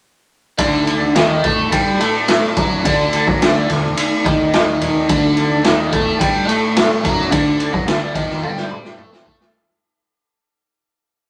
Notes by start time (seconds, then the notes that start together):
0.58 D2 D3 A3 D4 A4 D5, kick, ride
0.87 ride
1.01 high conga
1.15 D#2 D#3 D#4, snare, ride
1.43 A2 A3 A4, kick, ride, low conga
1.58 high conga, low conga
1.72 G2 G3 G4, kick, ride
1.99 A2 A3 A4, ride
2.28 snare, ride
2.43 snare
2.56 F#2 F#3 F#4, kick, ride, low conga
2.72 high conga
2.84 D2 D3 D4, kick, ride
3.13 ride
3.27 F#2 F#3 F#4, kick, high conga
3.41 D2 D3 D4, snare, ride
3.69 D2 D3, snare, ride, low conga
3.84 high conga, low conga
3.97 ride
4.25 D#2 D#3 D#4, kick, ride
4.53 snare, ride
4.81 ride, low conga
4.95 high conga
5.09 D2 D3 D4, kick, ride
5.37 ride
5.50 high conga
5.63 D#2 D#3 D#4, snare, ride
5.91 A2 A3 A4, kick, ride, low conga
6.06 high conga, low conga
6.19 G2 G3 G4, kick, ride
6.47 A2 A3 A4, ride
6.76 snare, ride
7.03 F#2 F#3 F#4, kick, ride, low conga
7.17 high conga
7.31 D2 D3 D4, kick, ride
7.60 ride
7.73 F#2 F#3 F#4, kick, high conga
7.87 D2 D3 D4, snare, ride
8.14 D#2 D#3 D#4, kick, ride, low conga
8.29 snare, high conga, low conga
8.42 G2 G3 G4, high tom
8.57 snare
8.71 mid tom
8.85 snare
8.97 A2 A3 A4, mid tom
9.11 C3 C4 C5, snare, high conga
9.25 A2 A3 A4, kick, low conga
9.40 snare, high conga